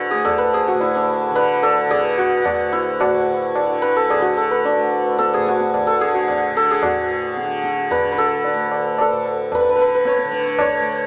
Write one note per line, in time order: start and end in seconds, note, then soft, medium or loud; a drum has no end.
0.00 0.13 D2 medium
0.00 0.72 A2 medium
0.00 1.30 D3 medium
0.00 0.80 E4 medium
0.00 0.67 F#4 medium
0.00 0.10 G#4 medium
0.00 0.19 B4 medium
0.11 2.45 D2 medium
0.11 0.31 G#4 medium
0.25 0.60 A4 medium
0.25 tabla na medium
0.25 tabla ge medium
0.38 1.35 B4 medium
0.54 1.69 G#4 medium
0.68 2.17 F#4 medium
0.73 3.03 A2 medium
0.80 2.72 E4 medium
0.80 tabla tin medium
0.95 4.65 D4 medium
1.30 1.87 D3 medium
1.35 3.81 B4 medium
1.35 tabla na medium
1.63 1.96 A4 loud
1.63 tabla na medium
1.87 3.62 D3 medium
1.87 4.02 G#4 medium
1.87 tabla na medium
1.87 tabla ge medium
2.18 2.44 F#4 medium
2.18 tabla ge medium
2.44 4.77 D2 medium
2.44 2.99 F#4 medium
2.44 tabla na medium
2.44 tabla ge medium
2.72 6.20 E4 medium
2.72 tabla te medium
3.00 4.21 F#4 medium
3.00 tabla na loud
3.00 tabla ge medium
3.04 5.35 A2 medium
3.55 tabla na medium
3.62 4.18 D3 medium
3.82 4.51 B4 medium
3.96 4.16 A4 medium
4.10 4.43 G#4 medium
4.10 tabla na medium
4.10 tabla ge medium
4.18 5.91 D3 medium
4.18 5.48 F#4 medium
4.37 5.18 A4 medium
4.51 7.26 B4 medium
4.65 8.38 D4 medium
4.65 tabla tin medium
4.78 8.53 D2 medium
5.18 5.40 A4 medium
5.18 tabla te medium
5.33 6.84 A2 medium
5.33 5.93 G#4 medium
5.33 tabla te medium
5.47 6.14 F#4 medium
5.47 tabla ke medium
5.60 tabla te medium
5.74 tabla na medium
5.74 tabla ge medium
5.87 6.07 A4 medium
5.91 6.51 D3 medium
6.01 6.63 G#4 medium
6.01 tabla ge medium
6.14 6.83 F#4 medium
6.28 tabla na medium
6.28 tabla ge medium
6.51 7.40 D3 medium
6.56 6.77 A4 loud
6.56 tabla te medium
6.71 8.24 G#4 medium
6.83 9.11 A2 medium
6.83 10.10 F#4 medium
6.83 tabla na loud
6.83 tabla ge medium
7.37 7.97 D3 medium
7.37 tabla te medium
7.51 tabla te medium
7.64 tabla ke medium
7.78 tabla te medium
7.91 8.12 B4 medium
7.91 tabla na medium
7.91 tabla ge medium
7.97 9.69 D3 medium
8.12 9.54 B4 medium
8.18 9.01 A4 medium
8.44 tabla tin medium
8.54 10.79 D2 medium
8.71 tabla na medium
8.98 11.07 A4 medium
8.98 tabla na medium
9.11 11.07 A2 medium
9.25 tabla na medium
9.52 9.60 B4 medium
9.52 tabla na medium
9.52 tabla ge medium
9.61 9.68 B4 medium
9.69 10.24 D3 medium
9.69 9.75 B4 medium
9.76 9.81 B4 medium
9.76 tabla te medium
9.81 9.88 B4 medium
9.88 9.94 B4 medium
9.95 11.07 B4 medium
10.05 10.60 C#5 medium
10.05 tabla te medium
10.19 tabla te medium
10.24 11.07 D3 medium
10.32 tabla ke medium
10.46 tabla te medium
10.59 11.07 C#5 medium
10.59 tabla na loud
10.59 tabla ge medium
10.80 11.07 D2 medium